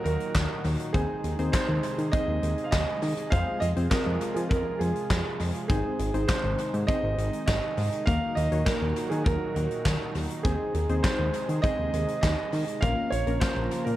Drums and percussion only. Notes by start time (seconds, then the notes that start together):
0.05 closed hi-hat
0.20 closed hi-hat
0.35 kick, snare, clap, closed hi-hat
0.65 open hi-hat
0.80 closed hi-hat
0.94 kick, closed hi-hat
1.24 closed hi-hat
1.39 closed hi-hat
1.54 kick, snare, clap, closed hi-hat
1.83 closed hi-hat
1.98 closed hi-hat
2.13 kick, closed hi-hat
2.43 closed hi-hat
2.58 closed hi-hat
2.73 kick, snare, clap, closed hi-hat
3.02 open hi-hat
3.17 closed hi-hat
3.32 kick, closed hi-hat
3.62 closed hi-hat
3.76 closed hi-hat
3.91 kick, snare, clap, closed hi-hat
4.21 closed hi-hat
4.36 closed hi-hat
4.51 kick, closed hi-hat
4.81 closed hi-hat
4.96 closed hi-hat
5.10 kick, snare, clap, closed hi-hat
5.40 open hi-hat
5.55 closed hi-hat
5.70 kick, closed hi-hat
5.99 closed hi-hat
6.14 closed hi-hat
6.29 kick, snare, clap, closed hi-hat
6.59 closed hi-hat
6.74 closed hi-hat
6.88 kick, closed hi-hat
7.18 closed hi-hat
7.33 closed hi-hat
7.48 kick, snare, clap, closed hi-hat
7.78 open hi-hat
7.93 closed hi-hat
8.07 kick, closed hi-hat
8.37 closed hi-hat
8.52 closed hi-hat
8.66 kick, snare, clap, closed hi-hat
8.96 closed hi-hat
9.11 closed hi-hat
9.26 kick, closed hi-hat
9.56 closed hi-hat
9.71 closed hi-hat
9.86 kick, snare, clap, closed hi-hat
10.15 open hi-hat
10.30 closed hi-hat
10.45 kick, closed hi-hat
10.75 closed hi-hat
10.89 closed hi-hat
11.04 kick, snare, clap, closed hi-hat
11.34 closed hi-hat
11.49 closed hi-hat
11.64 kick, closed hi-hat
11.94 closed hi-hat
12.08 closed hi-hat
12.23 kick, snare, clap, closed hi-hat
12.53 open hi-hat
12.68 closed hi-hat
12.83 kick, closed hi-hat
13.12 closed hi-hat
13.27 closed hi-hat
13.42 kick, snare, clap, closed hi-hat
13.71 closed hi-hat
13.87 closed hi-hat